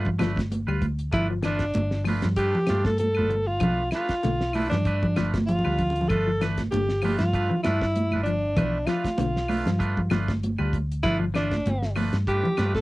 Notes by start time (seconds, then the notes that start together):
Already playing: G2 F4
0.05 kick, low conga
0.19 G1 F3 A3 D4 B4, snare, closed hi-hat, high conga, claves
0.36 kick, snare, closed hi-hat, high conga
0.51 closed hi-hat, high conga
0.67 D2 G3 F4 B4, claves
0.82 kick, closed hi-hat, high conga
0.99 closed hi-hat
1.12 G1 A3 D4 E4 F4 B4, kick, closed hi-hat, low conga, claves
1.30 F3
1.43 E3 A3 D4 F4 B4, snare, closed hi-hat, claves
1.59 kick, snare, closed hi-hat
1.74 G1, closed hi-hat, high conga
1.91 snare
2.05 F3 A3 D4 F4 B4, open hi-hat, high conga, claves
2.22 G2, snare, closed hi-hat, low conga
2.36 A3 D4 F4 G4 B4, kick, closed hi-hat
2.55 low conga
2.66 G2 A3 D4 F4, muted clean electric guitar stroke, snare, closed hi-hat, high conga, claves
2.84 A4, kick, snare, high conga
2.98 A4, closed hi-hat, high conga
3.14 G1 D4 F4 B4, claves
3.19 high conga
3.30 muted clean electric guitar stroke, closed hi-hat, high conga
3.47 F4
3.60 B1 F3 A3 D4 F4 B4, kick, closed hi-hat, low conga, claves
3.91 A3 D4 F4, snare, closed hi-hat, claves
3.95 F4 B4
4.09 kick, snare, closed hi-hat
4.23 B1 D3, snare, closed hi-hat, high conga
4.41 snare
4.53 A3 D4 E4 F4 B4, open hi-hat, high conga, claves
4.70 G2 E3 D4, snare, closed hi-hat, low conga
4.85 A3 D4 B4, muted clean electric guitar stroke, kick, closed hi-hat
5.03 kick, low conga
5.16 G1 F3 A3 D4 F4 B4, snare, closed hi-hat, high conga, claves
5.34 kick, snare, closed hi-hat, high conga
5.47 F4, closed hi-hat, low conga
5.59 low conga
5.65 D2 G3 D4 F4 B4, claves
5.79 kick, closed hi-hat, low conga
5.90 low conga
5.96 closed hi-hat
6.01 low conga
6.09 G1 A3 D4 F4 A4 B4, kick, closed hi-hat, low conga, claves
6.27 F3
6.41 E3 A3 D4 B4, muted clean electric guitar stroke, snare, closed hi-hat, claves
6.58 kick, snare, closed hi-hat, high conga
6.71 G1 D3 G4, closed hi-hat, high conga
6.89 snare
7.02 F3 A3 D4 F4 B4, open hi-hat, high conga, claves
7.19 G2 F4, snare, closed hi-hat, low conga
7.33 A3 D4 F4 B4, kick, closed hi-hat
7.50 E3, low conga
7.63 G2 A3 D4 E4 F4 B4, snare, closed hi-hat, high conga, claves
7.82 kick, snare
7.96 closed hi-hat, high conga
8.11 G1 D4 F4 B4, high conga, claves
8.24 F3 D4, closed hi-hat
8.57 B1 E3 A3 D4 F4 B4, kick, closed hi-hat, low conga, claves
8.87 F3 A3 D4 F4 B4, snare, closed hi-hat, claves
9.04 kick, snare, closed hi-hat, high conga
9.18 B1 D3, snare, closed hi-hat, high conga
9.37 snare
9.48 A3 D4 F4 B4, open hi-hat, high conga, claves
9.65 G2 F3, snare, closed hi-hat, low conga
9.79 A3 D4 F4 B4, kick, closed hi-hat
9.97 kick, low conga
10.10 G1 F3 A3 D4 F4 B4, snare, closed hi-hat, high conga, claves
10.28 kick, snare, closed hi-hat, high conga
10.43 closed hi-hat, high conga
10.58 D2 G3 D4 F4 B4, claves
10.73 kick, closed hi-hat, high conga
10.91 closed hi-hat
11.03 G1 A3 D4 E4 F4 B4, kick, closed hi-hat, low conga, claves
11.19 F3
11.34 E3 A3 D4 F4 B4, snare, closed hi-hat, claves
11.51 kick, snare, closed hi-hat, high conga
11.65 G1, closed hi-hat, high conga
11.82 snare
11.96 F3 A3 D4 F4 B4, open hi-hat, high conga, claves
12.13 G2, snare, closed hi-hat
12.27 A3 D4 F4 G4 B4, kick, closed hi-hat
12.43 E3, low conga
12.57 G2 A3 D4 F4 B4, snare, closed hi-hat, high conga, claves
12.75 A4, kick, snare, high conga